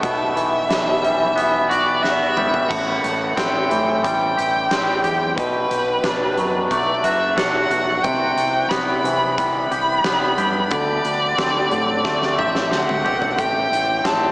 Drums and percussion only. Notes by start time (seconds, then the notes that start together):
0.03 kick, closed hi-hat
0.37 closed hi-hat
0.71 snare, closed hi-hat
1.04 closed hi-hat
1.38 closed hi-hat
1.71 closed hi-hat
2.04 snare
2.37 mid tom
2.54 floor tom
2.71 kick, crash
3.04 closed hi-hat
3.37 kick, snare, closed hi-hat
3.71 closed hi-hat
4.04 kick, closed hi-hat
4.39 closed hi-hat
4.71 snare, closed hi-hat
5.04 closed hi-hat
5.38 kick, closed hi-hat
5.71 closed hi-hat
6.04 kick, snare, closed hi-hat
6.38 closed hi-hat
6.71 kick, closed hi-hat
7.04 closed hi-hat
7.38 snare, closed hi-hat
7.71 closed hi-hat
8.04 kick, closed hi-hat
8.38 closed hi-hat
8.71 kick, snare, closed hi-hat
9.05 closed hi-hat
9.38 kick, closed hi-hat
9.72 closed hi-hat
10.04 snare, closed hi-hat
10.38 closed hi-hat
10.71 kick, closed hi-hat
11.05 closed hi-hat
11.38 kick, snare, closed hi-hat
11.71 closed hi-hat
12.05 kick, snare
12.22 snare
12.39 mid tom
12.55 snare
12.72 snare
12.89 mid tom
13.06 floor tom
13.22 floor tom
13.39 kick, closed hi-hat
13.73 closed hi-hat
14.05 kick, snare, closed hi-hat